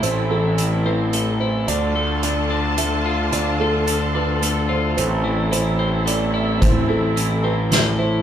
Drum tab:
HH |x-x-x-|x-x-x-|x-x-x-|x-x-x-|
SD |------|------|------|------|
BD |------|------|------|------|

HH |x-x-x-|
SD |----o-|
BD |o-----|